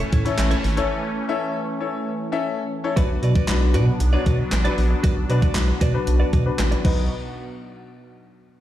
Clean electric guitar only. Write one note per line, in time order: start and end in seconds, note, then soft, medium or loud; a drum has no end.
0.00 0.11 E4 medium
0.00 0.12 A4 medium
0.00 0.12 C#5 medium
0.12 0.27 E4 medium
0.12 0.25 A4 medium
0.12 0.24 C#5 medium
0.38 muted clean electric guitar stroke soft
0.51 0.63 E4 medium
0.51 0.63 A4 medium
0.51 0.64 C#5 medium
0.64 muted clean electric guitar stroke soft
0.77 muted clean electric guitar stroke medium
2.96 3.16 F#4 medium
2.96 3.09 B4 loud
2.96 3.08 D5 medium
3.10 muted clean electric guitar stroke soft
3.22 3.36 F#4 medium
3.22 3.35 B4 medium
3.22 3.34 D5 medium
3.35 3.51 F#4 soft
3.35 3.51 B4 medium
3.35 3.51 D5 medium
3.61 muted clean electric guitar stroke medium
3.74 3.94 F#4 medium
3.74 3.87 B4 medium
3.74 3.86 D5 medium
3.87 muted clean electric guitar stroke soft
4.00 muted clean electric guitar stroke soft
4.13 4.24 F#4 medium
4.13 4.25 B4 medium
4.13 4.26 D5 medium
4.26 4.41 F#4 medium
4.26 4.39 B4 medium
4.26 4.38 D5 medium
4.39 muted clean electric guitar stroke soft
4.52 muted clean electric guitar stroke soft
4.65 4.76 F#4 medium
4.65 4.77 B4 medium
4.65 4.78 D5 medium
4.78 muted clean electric guitar stroke soft
4.91 muted clean electric guitar stroke medium
5.03 5.23 F#4 medium
5.03 5.16 B4 medium
5.03 5.15 D5 medium
5.16 muted clean electric guitar stroke medium
5.29 5.42 F#4 medium
5.29 5.42 B4 medium
5.29 5.41 D5 medium
5.42 5.58 F#4 medium
5.42 5.58 B4 medium
5.42 5.58 D5 medium
5.68 muted clean electric guitar stroke medium
5.81 6.01 F#4 medium
5.81 5.94 B4 medium
5.81 5.93 D5 medium
5.94 muted clean electric guitar stroke soft
6.07 muted clean electric guitar stroke soft
6.20 6.31 F#4 medium
6.20 6.32 B4 medium
6.20 6.33 D5 loud
6.33 6.48 F#4 medium
6.33 6.46 B4 medium
6.33 6.45 D5 medium
6.46 muted clean electric guitar stroke medium
6.59 muted clean electric guitar stroke soft
6.71 6.83 F#4 medium
6.71 6.84 B4 medium
6.71 6.85 D5 medium
6.84 7.00 F#4 medium
6.84 7.01 B4 medium
6.84 7.01 D#5 loud